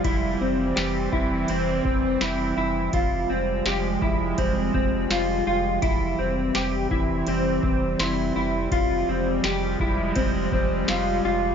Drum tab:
RD |x-x-x-x-|x-x-x-x-|x-x-x-x-|x-x-x-x-|
TB |--x---x-|--x---x-|--x---x-|--x---x-|
SD |--o---o-|--o---o-|--o---o-|--o---o-|
BD |o--o-o--|o--ooo--|o--o-o--|o--ooo--|